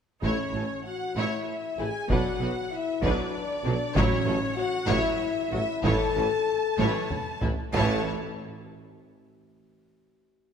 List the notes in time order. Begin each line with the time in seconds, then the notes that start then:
0.22 A1 A2 A3 C#4 E4 C#5, taiko
0.52 A1 A2 A3 C#4 A4
0.86 F#4 F#5
1.15 A1 A2 A3 E4 C#5 E5
1.77 A1 A2 A3 E4 G#4 G#5
2.08 B1 B2 F#3 D4 F#4 B4 F#5, taiko
2.39 B1 B2 F#3 B3 F#4
2.72 E4 E5
3.01 B1 B2 F#3 D4 B4 D5, taiko
3.64 B1 B2 F#3 D4
3.95 A1 A2 F#3 C#4 E4 C#5, taiko
4.25 A1 A2 F#3 C#4 A4
4.57 F#4 F#5
4.87 A1 A2 F#3 E4 C#5 E5, taiko
5.51 A1 A2 F#3 A3 E4 F#4 E5
5.83 A1 A2 E3 E4 A4 C#5 A5, taiko
6.15 A1 A2 E3 C#4 A4
6.77 A1 A2 E3 E4 C#5, taiko high
7.10 taiko low-mid
7.41 A1 A2 E3 A3 E4, taiko low
7.73 A1 A2 E3 E4 A4 C#5 A5, taiko low